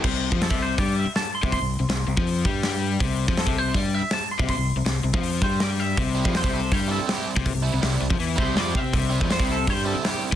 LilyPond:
<<
  \new Staff \with { instrumentName = "Clean electric guitar" } { \time 4/4 \key c \major \tempo 4 = 162 r4 a'8 c''8 d''8 e''8 a''8 c'''8 | c'''2 r2 | r4 a'8 c''8 d''8 e''8 a''8 c'''8 | c'''2 r8 c''8 d''8 e''8~ |
e''4 c''8 a'8 c''8 a'8 g'8 r8 | r2 r8 c''8 d''8 e''8~ | e''4 c''8 a'8 c''8 a'8 g'8 r8 | }
  \new Staff \with { instrumentName = "Overdriven electric guitar" } { \time 4/4 \key c \major r1 | r1 | r1 | r1 |
r8 <c g c' e'>8 <c g c' e'>8 r4 <c g c' e'>8 <c g c' e'>8 r8 | r8 <c g c' e'>8 <c g c' e'>8 r4 <c g c' e'>8 <c g c' e'>8 r8 | r8 <c g c' e'>8 <c g c' e'>8 r4 <c g c' e'>8 <c g c' e'>8 r8 | }
  \new Staff \with { instrumentName = "Overdriven electric guitar" } { \clef bass \time 4/4 \key c \major c8. f8 c8. g8. r4 c16~ | c16 c8 c16 c8 c16 f8. g4. | c8. f8 c8. g8. r4 c16~ | c16 c8 c16 c8 c16 f8. g4. |
c8. f8 c8. g8. r4 c16~ | c16 c8 c16 c8 c16 f16 e8 c8 f8 c'8 | c8. f8 c8. g8. r4 c16 | }
  \new Staff \with { instrumentName = "Fingered electric bass" } { \clef bass \time 4/4 \key c \major c,8. f,8 c,8. g,8. r4 c,16~ | c,16 c,8 c,16 c,8 c,16 f,8. g,4. | c,8. f,8 c,8. g,8. r4 c,16~ | c,16 c,8 c,16 c,8 c,16 f,8. g,4. |
c,8. f,8 c,8. g,8. r4 c,16~ | c,16 c,8 c,16 c,8 c,16 f,16 e,8 c,8 f,8 c8 | c,8. f,8 c,8. g,8. r4 c,16 | }
  \new DrumStaff \with { instrumentName = "Drums" } \drummode { \time 4/4 <cymc bd>8. bd16 <hho sn>16 bd8. <hho bd>4 <hho sn>8. bd16 | <hho bd>4 <hho sn>8. bd16 hho8 bd8 <hho sn>4 | <hho bd>8. bd16 <hho sn>16 bd8. <hho bd>4 <hho sn>8. bd16 | <hho bd>4 <hho sn>8. bd16 hho8 bd8 <hho sn>4 |
<hho bd>8. bd16 <hho sn>16 bd8. <hho bd>4 <hho sn>8. bd16 | <hho bd>4 <hho sn>8. bd16 hho8 bd8 <hho sn>8 bd8 | <hho bd>8. bd16 <hho sn>16 bd8. <hho bd>4 <hho sn>8. bd16 | }
>>